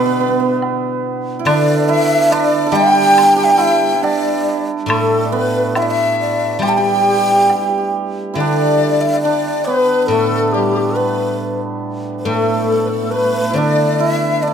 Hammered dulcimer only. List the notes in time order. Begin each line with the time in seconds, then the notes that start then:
Already playing: D4 E4
0.06 B3
0.12 B3
0.20 B3
0.28 B3
0.40 B3
1.39 E4
1.46 D4
1.89 E4
2.31 D4
2.67 A4
2.72 G4
3.37 G4
3.58 E4
3.95 E4
4.03 D4
4.88 A3
5.25 D4
5.32 B3
5.76 E4
6.63 G4
6.78 G4
6.86 G4
6.94 G4
7.02 G4
7.09 G4
7.17 G4
7.25 G4
7.32 G4
7.39 G4
7.46 G4
7.55 G4
7.62 G4
7.69 G4
7.78 G4
8.34 E4
8.40 D4
9.25 D4
9.67 B3
10.11 A3
10.54 G3
10.96 B3
12.26 A3
12.35 A3
12.42 A3
12.50 A3
12.57 A3
12.64 A3
12.72 A3
12.80 A3
12.87 A3
12.96 A3
13.03 A3
13.10 A3
13.17 A3
13.24 A3
13.33 A3
13.41 A3
13.50 E4
13.58 D4
14.00 E4
14.43 D4